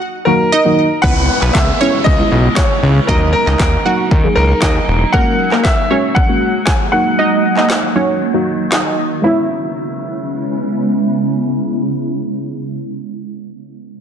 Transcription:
0.25 D#3 F#3 A#3 D#4 F#4 A#4
0.52 D#4 D#5
0.65 D#3 F#3 A#3 D#4 F#4
1.02 C#2 C#3 G#3 B3 C#4 E4 B4 F#5, kick, downlifter
1.42 B1 B3 B4, clap
1.53 C#2 E5, kick, snare, clap
1.80 G#3 B3 C#4 E4 C#5
2.04 C#2 D#5, kick
2.19 G#3 B3 C#4 E4
2.32 B1
2.56 C#5, kick, snare, clap
2.83 C#2
3.07 D#2 F#3 A#3 D#4 F#4 A#4 D#5, kick
3.33 A#4
3.47 C#2 D#4 D#5, clap
3.60 D#2, kick, snare, clap
3.85 F#3 A#3 D#4 F#4 F#5
4.11 D#2, kick
4.24 F#3 A#3 D#4 G#4
4.35 C#2 A#4
4.62 D#2 D#4 D#5, kick, snare, clap
4.88 E1
5.12 G#3 A#3 C#4 F#4 A#4 F#5, kick
5.52 A#3 A#4, clap
5.63 E5, kick, snare, clap
5.90 G#3 A#3 C#4 F#4 C#5
6.15 F#5, kick
6.28 G#3 A#3 C#4 F#4
6.66 G#5, kick, snare, clap
6.92 D#3 F#3 A#3 D#4 F#4 F#5
7.19 D#4 D#5
7.57 D#4 D#5, clap
7.70 snare, clap
7.95 F#3 A#3 C#4 D#4 F#4 C#5
8.34 F#3 A#3 D#4 F#4
8.72 D#4 D#5, snare, clap
9.22 C#3 G#3 B3 C#4 E4 E5
9.26 E4

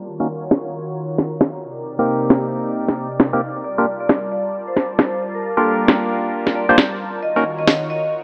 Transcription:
Already playing: A#4
0.06 D#3 F4 F#4 C#5
0.20 A#3 C#4 D#4 F#4 A#4
0.51 snare
1.18 snare
1.41 snare
1.63 C3 D#4 G4 D5
1.99 A#3 C4 D#4 G4 A#4
2.30 snare
2.88 snare
3.20 snare
3.33 A#3 C4 D#4 G4 A#4
3.64 G3 F4 A#4 D5 A5
3.78 A#3 D4 F4 G4 A#4
4.00 D5
4.09 snare
4.32 D5
4.68 C5
4.77 snare
4.99 C5, snare
5.35 A#4
5.57 A#3 D4 F4 G4 A4 A#4
5.88 snare
6.47 snare
6.55 D5
6.69 A#3 D4 F4 G4 C5
6.78 snare
7.23 D#3 F#4 C#5 D#5
7.36 A#3 C#4 D#4 F#4 A#4
7.59 D#5
7.67 snare
7.90 D#5

